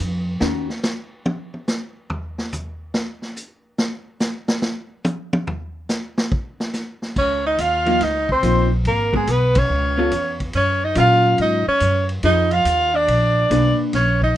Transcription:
0.00 upright bass F2
0.40 upright bass D#2, hollow-body jazz guitar D#3 C#4 F#4 A#4, snare
0.70 snare
0.83 snare, hi-hat pedal
1.26 high tom
1.54 high tom
1.68 snare, hi-hat pedal
2.10 floor tom
2.38 snare
2.52 floor tom, hi-hat pedal
2.94 snare
3.22 snare
3.36 hi-hat pedal
3.78 snare
4.20 snare, hi-hat pedal
4.48 snare
4.62 snare
5.04 hi-hat pedal, high tom
5.33 high tom
5.47 floor tom
5.89 snare, hi-hat pedal
6.18 snare
6.32 kick
6.60 snare
6.73 snare, hi-hat pedal
7.02 snare
7.16 upright bass C#2, tenor saxophone C#4, soprano saxophone C#5, kick, crash
7.46 tenor saxophone D#4, soprano saxophone D#5
7.58 upright bass D#2, tenor saxophone F4, soprano saxophone F5, hi-hat pedal, ride
7.86 hollow-body jazz guitar F3 A#3 D#4, ride
8.01 upright bass C#2, tenor saxophone D#4, soprano saxophone D#5, snare, ride
8.29 tenor saxophone C4, soprano saxophone C5, kick
8.43 upright bass A#1, hollow-body jazz guitar F3 A#3 D#4, hi-hat pedal, ride
8.85 upright bass G#1, tenor saxophone A#3, soprano saxophone A#4, ride
9.13 hollow-body jazz guitar G#3 B3 F#4 A#4, tenor saxophone G#3, soprano saxophone G#4, kick
9.27 upright bass B1, tenor saxophone B3, hi-hat pedal, ride
9.31 soprano saxophone B4
9.55 tenor saxophone C#4, soprano saxophone C#5, kick, ride
9.70 upright bass C#2
9.97 hollow-body jazz guitar B3 F4 A4
10.12 upright bass E2, hi-hat pedal, ride
10.40 kick, ride
10.53 upright bass F#2, tenor saxophone C#4, soprano saxophone C#5, ride
10.84 tenor saxophone D#4, soprano saxophone D#5
10.95 upright bass A#2, hollow-body jazz guitar F#3 C#4 F4 A#4, tenor saxophone F4, hi-hat pedal, ride
11.00 soprano saxophone F5
11.38 upright bass G#2, tenor saxophone D#4, soprano saxophone D#5, ride
11.68 tenor saxophone C#4, soprano saxophone C#5, muted upright bass stroke
11.80 upright bass F#2, hi-hat pedal, ride
12.09 ride
12.23 upright bass F2, hollow-body jazz guitar F3 D#4 G#4 B4, tenor saxophone D#4, soprano saxophone D#5, ride
12.51 tenor saxophone F4, soprano saxophone F5, ride
12.65 upright bass D#2, hi-hat pedal, ride
12.94 tenor saxophone D4, soprano saxophone D5
13.07 upright bass A#1, ride
13.50 upright bass B1, hollow-body jazz guitar A#3 D4 G#4 B4, hi-hat pedal, ride
13.93 upright bass A#1, tenor saxophone C#4, soprano saxophone C#5, snare, ride
14.22 tenor saxophone D#4, soprano saxophone D#5, kick

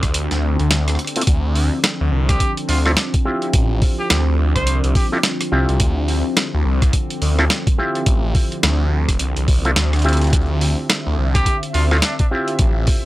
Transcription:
Already playing: ambient pad D3 C4 G4, clav C4 E4 F4 G4
0.03 detuned saw bass D2, kick, cross-stick, closed hi-hat
0.14 closed hi-hat
0.31 detuned saw bass D2, snare, closed hi-hat
0.60 detuned saw bass D2, closed hi-hat
0.71 snare, closed hi-hat
0.88 cross-stick, closed hi-hat
0.90 cross-stick
0.95 cross-stick
0.99 cross-stick, closed hi-hat
1.05 cross-stick, closed hi-hat
1.08 cross-stick
1.16 clav C4 E4 F4 A4, closed hi-hat
1.21 closed hi-hat
1.27 detuned saw bass D2, ambient pad F3, kick, closed hi-hat
1.55 open hi-hat
1.84 snare, closed hi-hat
2.01 detuned saw bass D2
2.12 detuned saw bass C2
2.29 trumpet G4, kick, cross-stick, closed hi-hat
2.40 kick, closed hi-hat
2.57 closed hi-hat
2.68 detuned saw bass D2, trumpet F4, open hi-hat
2.85 clav C4 E4 F4 A4, trumpet F4, cross-stick
2.97 snare, closed hi-hat
3.14 kick, closed hi-hat
3.25 clav C4 E4 F4 G4
3.42 closed hi-hat
3.53 detuned saw bass A1, kick, closed hi-hat
3.82 kick, open hi-hat
3.99 trumpet G4
4.10 detuned saw bass D2, trumpet G4, snare, closed hi-hat
4.56 detuned saw bass C2, trumpet C5, kick, cross-stick, closed hi-hat
4.67 closed hi-hat
4.84 detuned saw bass C2, closed hi-hat
4.95 trumpet G4, kick, open hi-hat
5.12 clav C4 E4 F4 A4, trumpet G4
5.23 snare, closed hi-hat
5.41 cross-stick, closed hi-hat
5.52 detuned saw bass C2, clav C4 E4 F4 G4
5.69 detuned saw bass C2, closed hi-hat
5.80 detuned saw bass D2, kick, closed hi-hat
6.08 open hi-hat
6.37 snare, closed hi-hat
6.54 detuned saw bass D2
6.65 detuned saw bass C2
6.82 kick, cross-stick, closed hi-hat
6.93 kick, closed hi-hat
7.10 closed hi-hat
7.22 detuned saw bass D2, open hi-hat
7.39 clav C4 E4 F4 A4, cross-stick
7.50 snare, closed hi-hat
7.67 kick, closed hi-hat
7.78 clav C4 E4 F4 G4
7.95 closed hi-hat
8.06 detuned saw bass A1, kick, closed hi-hat
8.35 kick, open hi-hat
8.52 closed hi-hat
8.63 detuned saw bass D2, snare, closed hi-hat
9.08 detuned saw bass F1, kick, cross-stick, closed hi-hat
9.19 detuned saw bass C2, closed hi-hat
9.37 detuned saw bass C2, closed hi-hat
9.48 kick, open hi-hat
9.65 clav C4 E4 F4 A4, closed hi-hat
9.76 detuned saw bass D2, snare, closed hi-hat
9.93 cross-stick, closed hi-hat
9.96 closed hi-hat
9.99 closed hi-hat
10.02 closed hi-hat
10.05 clav C4 E4 F4 G4, closed hi-hat
10.09 closed hi-hat
10.13 closed hi-hat
10.17 closed hi-hat
10.21 closed hi-hat
10.24 closed hi-hat
10.27 closed hi-hat
10.30 detuned saw bass D2, kick, closed hi-hat
10.33 ambient pad E5, closed hi-hat
10.41 closed hi-hat
10.46 closed hi-hat
10.61 open hi-hat
10.90 snare, closed hi-hat
11.06 detuned saw bass D2
11.18 detuned saw bass C2
11.34 trumpet G4, kick, cross-stick, closed hi-hat
11.46 kick, closed hi-hat
11.63 closed hi-hat
11.74 detuned saw bass D2, trumpet F4, open hi-hat
11.91 clav C4 E4 F4 A4, trumpet F4, cross-stick
11.93 cross-stick
11.97 cross-stick
11.99 cross-stick
12.00 trumpet D4, cross-stick, snare, closed hi-hat
12.19 trumpet D4, kick, closed hi-hat
12.31 clav C4 E4 F4 G4
12.48 closed hi-hat
12.59 detuned saw bass A1, kick, closed hi-hat
12.87 kick, open hi-hat

